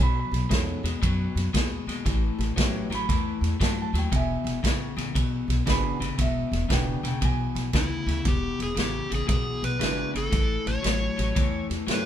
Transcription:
0.00 B1 B2 F#3 B5
0.15 A#5
0.19 B5
0.32 B1, snare, ride
0.49 E2 B2 G#3 A3 C#4 D#4 F#4, kick, snare, ride
0.83 E2 B2 G#3, snare, ride
1.02 F#2 B2 F#3, kick, ride
1.35 F#2, snare, ride
1.53 D#2 B2 G#3, kick, snare, ride
1.87 D#2 B2 G#3, snare, ride
2.05 A1 A2 E3, kick, snare, ride
2.39 A1, snare, ride
2.56 A1 A2 F#3 B3 C#4 E4 G4, kick, snare, ride
2.90 A1 A2 F#3 A#5, snare, ride
2.95 B5
3.09 E2 A2 E3, kick, snare, ride
3.41 E2, snare, ride
3.60 G2 A2 F#3 A5, kick, snare, ride
3.82 A5
3.93 D#2 A2 F#3, snare, ride
3.98 G5
4.11 E1 E2 B2, kick, ride
4.16 E5 G#5
4.44 E1, snare, ride
4.63 A1 E2 C#3, kick, snare, ride
4.97 A1 E2 C#3, snare, ride
5.14 B1 E2 B2, kick, ride
5.48 B1, snare, ride
5.66 G#1 E2 C#3 B3 D4 F#4 G#4 B5, kick, snare, ride
6.00 G#1 E2 C#3, snare, ride
6.18 E1 E2 B2 E5, kick, snare, ride
6.52 E1, snare, ride
6.69 E1 E2 C#3 B3 D4 F#4 G#4, kick, snare, ride
6.73 G5
7.03 E1 E2 C#3 G5, snare, ride
7.21 B1 E2 B2 G#5, kick, ride
7.55 B1, snare, ride
7.73 D2 E2 C#3 E4, kick, snare, ride
8.06 D2 E2 C#3, snare, ride
8.24 E1 E2 B2 G4, kick, snare, ride
8.59 E1 G#4, snare, ride
8.75 A1 E2 C#3, snare, ride
8.80 G4
9.09 A1 E2 C#3, snare, ride
9.15 G#4
9.26 B1 E2 B2 G#4, kick, snare, ride
9.62 B1 B4, snare, ride
9.79 G#1 E2 C#3 G#3 B3 D4 E4 F#4, snare, ride
10.13 G#1 E2 C#3, snare, ride
10.17 A4
10.30 A1 A2 E3, kick, snare, ride
10.66 A1 C#5, snare, ride
10.82 A1 A2 F#3, snare, ride
11.16 A1 A2 F#3, snare, ride
11.35 E2 A2 E3, kick, snare, ride
11.70 E2, snare, ride
11.87 G2 A2 F#3 A3 B3 C#4 E4 G4, snare, ride
11.94 B4

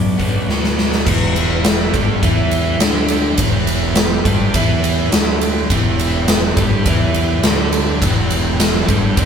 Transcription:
Already playing: F#2 B2 F#3 B3 D4 F#4 B4 D5
0.18 B2 F#3 B3, kick, open hi-hat
0.48 D2 B2 F#3 B3, snare
0.64 snare
0.78 snare
0.92 snare
1.07 E1 E2 E3 E4 G4 B4 E5, kick, crash
1.36 ride
1.64 snare, ride
1.94 G1 G2 G3, kick, ride
2.23 E2 E3 E4, kick, ride
2.51 ride
2.80 D2 D3 D4, snare, ride
3.08 ride
3.38 E1 E2 E3 E4 G4 B4, kick, ride
3.67 ride
3.95 snare, ride
4.25 G1 G2 G3, kick, ride
4.54 E2 E3 E4, kick, ride
4.84 ride
5.12 D2 D3 D4, snare, ride
5.41 ride
5.70 E1 E2 E3 E4 G4 B4, kick, ride
5.99 ride
6.28 snare, ride
6.57 G1 G2 G3, kick, ride
6.86 E2 E3 E4, kick, ride
7.14 ride
7.43 D2 D3 D4, snare, ride
7.73 ride
8.02 E1 E2 E3 B3 E4 G4, kick, ride
8.30 ride
8.60 snare, ride
8.88 G1 G2 G3, kick, ride
9.17 E2 E3 E4, kick, ride

